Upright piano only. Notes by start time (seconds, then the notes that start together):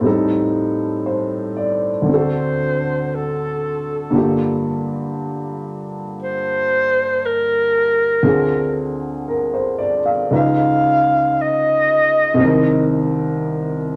0.01 A2 G3 C4
0.05 D#4 A4
1.06 C5
1.57 D5
2.02 D2 D3
2.09 C4 F#4
2.14 A4
4.10 G2 D3 A#3
4.15 F4 G4
8.23 D2 D3 C4 F4 G#4
9.28 A#4
9.54 C5
9.78 D5
10.06 F5
10.31 C#2 C#3 D#4 F4 B4
12.34 C2 C3
12.40 D#3 C4
12.45 A#4